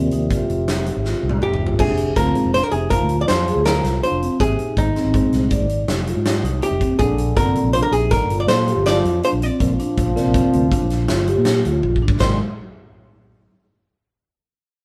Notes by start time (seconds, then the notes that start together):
Already playing: C3 F3 A#3 D4 G#4
0.11 D#2 D#4, closed hi-hat
0.30 F4, kick, closed hi-hat
0.49 F1, closed hi-hat
0.68 D#4, snare, closed hi-hat
0.86 closed hi-hat
0.96 G#1
1.05 F4, snare
1.23 C2 D#4
1.29 high tom
1.42 C3 G4, mid tom
1.51 F#1, mid tom
1.62 F4
1.67 floor tom
1.78 F1 A#2 C3 D#3 G#3 C4 D4 G#4, kick, crash
1.97 closed hi-hat
2.16 D2 F3 C4 A#4, kick, snare, closed hi-hat
2.35 A#2 D#3 G#3 C4, closed hi-hat
2.45 F1
2.54 F3 D4 C5, snare, closed hi-hat
2.63 D3 A#4
2.71 F1 C3 D#4 G#4, closed hi-hat
2.90 F3 A#4, kick, closed hi-hat
3.01 D2
3.09 F4, closed hi-hat
3.20 F3 D5
3.28 F2 F3 C5, snare, closed hi-hat
3.48 G#4, closed hi-hat
3.56 D2
3.66 F3 F4 A#4, snare, closed hi-hat
3.84 C2, snare, closed hi-hat
4.03 F3 D4 C5, closed hi-hat
4.11 F1
4.21 C4, closed hi-hat
4.40 G#1 C3 G#4, kick, closed hi-hat
4.59 D#4, closed hi-hat
4.76 G#1 G#2 A#2 D#3 G#3 C4 D#4, kick, closed hi-hat
4.96 C4, snare, closed hi-hat
5.05 G#1
5.14 A#2 D#3 G#3 C4, kick, closed hi-hat
5.32 C2, snare, closed hi-hat
5.50 D5, kick, closed hi-hat
5.60 G#1
5.69 closed hi-hat
5.88 F1 D#4, snare, closed hi-hat
6.07 F4, closed hi-hat
6.16 G#2
6.26 snare, closed hi-hat
6.43 C2 D#4, closed hi-hat
6.62 C3 G4, closed hi-hat
6.71 F1
6.81 C4, kick, closed hi-hat
6.99 A#1 D3 D4 G#4, kick, closed hi-hat
7.18 closed hi-hat
7.36 G1 C3 D3 F3 A#3 C4 D4 A#4, kick, snare, closed hi-hat
7.55 closed hi-hat
7.63 A#1
7.73 C3 F3 A#3 D4 C5, closed hi-hat
7.83 D3 A#4
7.92 A#1 C3 D#4 G#4, closed hi-hat
8.11 D3 A#4, kick, snare, closed hi-hat
8.19 G1
8.30 F4, closed hi-hat
8.40 F3 D5
8.47 A#2 F3 C5, snare, closed hi-hat
8.68 G4, closed hi-hat
8.76 G1
8.86 F3 F4 D5, snare, closed hi-hat
9.05 F2, closed hi-hat
9.23 F3 D4 C5, closed hi-hat
9.33 A#1
9.42 F3 C4 D5, closed hi-hat
9.60 A#1 C3 F3 A#3 D4, kick, closed hi-hat
9.79 D4, closed hi-hat
9.97 A#1, kick, closed hi-hat
10.16 C3 F3 A#3 C4 D4, snare, closed hi-hat
10.26 A#1
10.34 C4, kick, closed hi-hat
10.53 D2, closed hi-hat
10.72 D4, kick, closed hi-hat
10.82 A#1
10.90 snare, closed hi-hat
11.08 F4, snare, closed hi-hat
11.27 G4, closed hi-hat
11.38 A#2
11.45 snare, closed hi-hat
11.65 D2 F4, closed hi-hat
11.83 A#1, kick
11.96 kick
12.02 G#1 D4
12.08 kick
12.20 G#1 C3 D#3 F3 G#3 A#3 D4 C5, kick, snare, splash